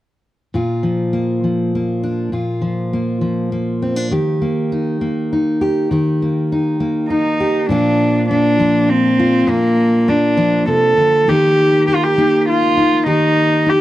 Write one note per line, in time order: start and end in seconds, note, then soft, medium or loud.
0.54 2.31 A#2 soft
0.54 2.32 F4 soft
0.83 1.43 F3 soft
1.13 1.75 A#3 soft
1.44 2.30 F3 soft
1.75 2.93 A#3 soft
2.03 2.30 D4 soft
2.32 4.12 A#2 soft
2.32 4.12 F4 soft
2.62 3.20 F3 soft
2.93 3.52 A#3 soft
3.21 4.08 F3 soft
3.52 4.41 A#3 soft
3.82 3.96 C4 soft
3.96 4.12 D4 soft
4.11 5.90 D#3 medium
4.11 5.60 G4 medium
4.42 5.01 A#3 soft
4.72 5.31 D#4 soft
5.01 6.22 A#3 medium
5.33 5.88 D#4 soft
5.61 5.88 G4 medium
5.91 7.70 D#3 medium
5.91 7.39 G4 soft
6.22 6.79 A#3 soft
6.52 7.09 D#4 soft
6.80 7.66 A#3 medium
7.10 7.66 D#4 medium
7.10 7.67 D#4 soft
7.40 7.67 G4 medium
7.69 9.46 A#2 medium
7.69 8.59 F3 soft
7.69 8.30 A#3 soft
7.69 8.26 D4 medium
7.69 8.60 D4 soft
7.69 9.18 F4 medium
8.30 10.08 A#3 soft
8.30 8.91 D4 medium
8.59 9.45 F3 medium
8.59 9.46 D4 medium
8.89 9.51 C4 medium
9.20 11.28 F4 medium
9.47 10.67 A#2 medium
9.47 10.10 A#3 medium
9.47 10.36 D4 soft
10.08 11.28 A#3 soft
10.08 10.68 D4 medium
10.37 11.24 F3 medium
10.37 11.24 D4 medium
10.67 10.97 C3 medium
10.67 11.31 A4 medium
10.97 11.28 D3 soft
11.28 13.05 D#3 medium
11.28 12.17 A#3 soft
11.28 11.88 D#4 soft
11.28 11.87 G4 medium
11.87 12.18 D#4 medium
11.87 11.96 G4 medium
11.95 12.05 F4 medium
12.03 12.48 G4 medium
12.18 13.81 A#3 medium
12.18 12.76 D#4 medium
12.49 13.04 F4 medium
12.77 13.03 D#4 soft
13.06 13.81 D#3 medium
13.06 13.71 D#4 medium
13.06 13.81 G4 medium
13.66 13.81 D#4 medium
13.66 13.81 G4 medium